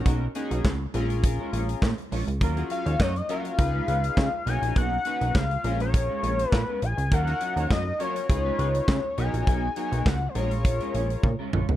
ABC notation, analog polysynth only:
X:1
M:4/4
L:1/16
Q:1/4=102
K:Bbphr
V:1 name="Analog polysynth"
[D^D^F^A] z [_D^DF_A]2 z2 [=C_D=FAB]6 z4 | [GB] [DFGA]2 z3 [DFGB]2 [EFAc]4- [EFAc] z [D^D^F^A]2- | [D^D^F^A] z [_D^DF=B]2 z2 [_D=F_A_B]6 z4 | [GB] [DEGB]2 z3 [DFGB]2 [EFAc]4- [EFAc] z [^D^F^A_d]2- |
[^D^F^A_d] z [^DFA_d]2 z2 [=F_ABd]6 z4 |]